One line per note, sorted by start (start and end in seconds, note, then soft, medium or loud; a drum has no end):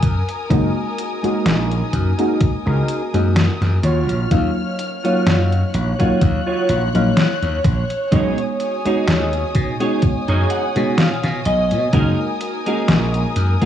0.00 0.21 F#2 medium
0.00 3.80 A#4 medium
0.00 3.80 G#5 medium
0.00 3.80 D#6 medium
0.00 kick loud
0.00 closed hi-hat medium
0.29 closed hi-hat medium
0.49 0.69 F#1 loud
0.49 1.17 G#3 medium
0.49 1.17 A#3 medium
0.49 1.18 C#4 medium
0.49 0.76 D#4 loud
0.49 1.18 D#4 medium
0.49 1.18 F#4 medium
0.49 0.76 G#4 medium
0.49 0.76 A#4 loud
0.49 kick loud
0.49 closed hi-hat medium
0.97 muted clean electric guitar stroke soft
0.97 closed hi-hat medium
1.23 2.12 G#3 medium
1.23 2.12 A#3 medium
1.23 2.13 C#4 medium
1.23 1.71 D#4 medium
1.23 2.13 D#4 medium
1.23 2.13 F#4 medium
1.23 1.71 G#4 medium
1.23 1.72 A#4 medium
1.23 muted slap bass stroke soft
1.23 closed hi-hat medium
1.46 1.81 A#1 loud
1.46 snare loud
1.46 closed hi-hat medium
1.71 closed hi-hat soft
1.93 2.12 F#2 medium
1.93 kick medium
1.93 closed hi-hat medium
2.18 3.08 G#3 medium
2.18 3.08 A#3 medium
2.18 3.08 C#4 medium
2.18 2.41 D#4 medium
2.18 3.08 D#4 medium
2.18 3.08 F#4 medium
2.18 2.41 G#4 medium
2.18 2.41 A#4 medium
2.18 closed hi-hat medium
2.41 kick loud
2.41 closed hi-hat medium
2.66 2.82 C#2 medium
2.66 3.01 D#4 loud
2.66 3.01 G#4 loud
2.66 3.01 A#4 loud
2.88 closed hi-hat medium
3.13 3.48 F#2 medium
3.13 3.43 G#3 medium
3.13 3.44 A#3 medium
3.13 3.44 C#4 medium
3.13 3.44 D#4 medium
3.13 3.44 F#4 medium
3.13 closed hi-hat medium
3.36 muted clean electric guitar stroke medium
3.36 snare loud
3.36 closed hi-hat medium
3.61 3.78 F#2 medium
3.61 muted clean electric guitar stroke soft
3.61 snare soft
3.61 closed hi-hat soft
3.83 4.09 D#2 medium
3.83 4.61 F4 medium
3.83 4.62 F#4 medium
3.83 11.89 C#5 medium
3.83 4.62 C#5 loud
3.83 5.73 F6 medium
3.83 closed hi-hat medium
4.09 4.25 A#1 medium
4.09 closed hi-hat medium
4.30 4.50 D#2 medium
4.30 4.98 F#3 medium
4.30 4.98 A#3 medium
4.30 4.98 C#4 medium
4.30 4.99 D#4 medium
4.30 4.99 F5 medium
4.30 kick loud
4.30 closed hi-hat medium
4.79 muted clean electric guitar stroke soft
4.79 closed hi-hat medium
5.04 5.93 F#3 medium
5.04 5.94 A#3 medium
5.04 5.94 C#4 medium
5.04 5.94 D#4 medium
5.04 5.52 F4 medium
5.04 5.52 F#4 medium
5.04 5.52 C#5 medium
5.04 5.94 F5 medium
5.04 closed hi-hat medium
5.26 5.62 F#2 loud
5.26 snare loud
5.26 closed hi-hat medium
5.52 closed hi-hat soft
5.74 5.93 A#1 medium
5.74 8.10 F#6 medium
5.74 closed hi-hat medium
5.99 6.88 F#3 medium
5.99 6.89 A#3 medium
5.99 6.89 C#4 medium
5.99 6.89 D#4 medium
5.99 6.21 F4 medium
5.99 6.22 F#4 medium
5.99 6.22 C#5 medium
5.99 6.89 F5 medium
5.99 kick medium
5.99 closed hi-hat soft
6.22 6.41 D#2 medium
6.22 kick loud
6.22 closed hi-hat medium
6.47 6.82 F4 loud
6.47 6.82 F#4 loud
6.47 6.82 C#5 loud
6.69 6.88 A#1 loud
6.69 closed hi-hat medium
6.94 7.11 A#1 medium
6.94 7.24 F#3 medium
6.94 7.25 A#3 medium
6.94 7.25 C#4 medium
6.94 7.25 D#4 medium
6.94 7.25 F5 loud
6.94 closed hi-hat medium
7.16 muted clean electric guitar stroke medium
7.16 snare loud
7.16 closed hi-hat medium
7.42 7.59 D#2 medium
7.42 muted clean electric guitar stroke soft
7.42 closed hi-hat soft
7.65 7.83 A#1 medium
7.65 kick loud
7.65 closed hi-hat medium
7.90 closed hi-hat medium
8.11 8.31 B1 loud
8.11 8.79 G#3 medium
8.11 8.79 B3 medium
8.11 8.79 C#4 medium
8.11 8.38 D#4 loud
8.11 8.80 D#4 medium
8.11 8.80 F#4 medium
8.11 8.38 G#4 loud
8.11 8.38 C#5 loud
8.11 13.65 G#5 medium
8.11 13.65 D#6 medium
8.11 kick loud
8.11 closed hi-hat medium
8.38 closed hi-hat soft
8.60 muted clean electric guitar stroke soft
8.60 closed hi-hat medium
8.85 9.74 G#3 medium
8.85 9.74 B3 medium
8.85 9.75 C#4 medium
8.85 9.33 D#4 medium
8.85 9.75 D#4 medium
8.85 9.75 F#4 medium
8.85 9.33 G#4 medium
8.85 9.34 C#5 medium
8.85 muted slap bass stroke soft
8.85 closed hi-hat medium
9.07 9.43 D#2 loud
9.07 snare loud
9.07 closed hi-hat medium
9.33 closed hi-hat soft
9.55 9.74 B2 medium
9.55 kick medium
9.55 closed hi-hat medium
9.80 10.69 G#3 medium
9.80 10.70 B3 medium
9.80 10.70 C#4 medium
9.80 10.03 D#4 medium
9.80 10.70 D#4 medium
9.80 10.70 F#4 medium
9.80 10.03 G#4 medium
9.80 10.03 C#5 medium
9.80 closed hi-hat medium
10.02 kick loud
10.02 closed hi-hat medium
10.28 10.44 F#2 medium
10.28 10.63 D#4 loud
10.28 10.64 G#4 loud
10.28 10.64 C#5 loud
10.28 closed hi-hat soft
10.50 10.95 F#5 medium
10.50 closed hi-hat medium
10.75 11.10 B2 medium
10.75 11.05 G#3 medium
10.75 11.06 B3 medium
10.75 11.06 C#4 medium
10.75 11.06 D#4 medium
10.75 11.06 F#4 loud
10.75 closed hi-hat medium
10.98 11.42 F5 medium
10.98 muted clean electric guitar stroke medium
10.98 snare loud
10.98 closed hi-hat medium
11.23 11.40 B2 medium
11.23 muted clean electric guitar stroke soft
11.23 snare soft
11.23 closed hi-hat soft
11.45 11.73 B1 medium
11.45 11.90 D#5 medium
11.45 closed hi-hat medium
11.71 11.87 B2 medium
11.71 closed hi-hat medium
11.93 12.12 F#1 loud
11.93 12.60 G#3 medium
11.93 12.60 A#3 medium
11.93 12.61 C#4 medium
11.93 12.19 D#4 loud
11.93 12.61 D#4 medium
11.93 12.61 F#4 medium
11.93 12.19 G#4 medium
11.93 13.65 A#4 medium
11.93 12.19 A#4 loud
11.93 kick loud
11.93 closed hi-hat medium
12.41 muted clean electric guitar stroke soft
12.41 closed hi-hat medium
12.66 13.55 G#3 medium
12.66 13.56 A#3 medium
12.66 13.56 C#4 medium
12.66 13.14 D#4 medium
12.66 13.56 D#4 medium
12.66 13.56 F#4 medium
12.66 13.14 G#4 medium
12.66 13.14 A#4 medium
12.66 closed hi-hat soft
12.88 13.24 A#1 loud
12.88 snare loud
12.88 closed hi-hat medium
13.14 closed hi-hat soft
13.36 13.55 F#2 medium
13.36 closed hi-hat medium
13.61 13.65 G#3 medium
13.61 13.65 A#3 medium
13.61 13.65 C#4 medium
13.61 13.65 D#4 medium
13.61 13.65 G#4 medium
13.61 13.65 A#4 medium
13.61 kick medium
13.61 closed hi-hat soft